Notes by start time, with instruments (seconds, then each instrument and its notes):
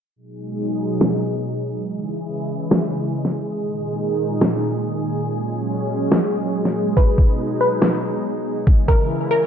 0.16 analog synth pad B2 F#3 G#3 D#4 G#4
1.01 snare
1.86 analog synth pad C#3 E3 G#3 E4 G#4
2.71 snare
3.25 snare
3.56 analog synth pad A#2 D#3 D#4
4.41 snare
5.27 analog synth pad F#3 G#3 C#4
6.12 snare
6.65 snare
6.97 analog synth pad B2 D#4, synth pluck B4, kick
7.18 kick
7.61 synth pluck B4
7.82 snare
8.67 analog synth pad C#3 E3 G#3 E4, kick
8.88 synth pluck A#4, kick
9.31 synth pluck A#4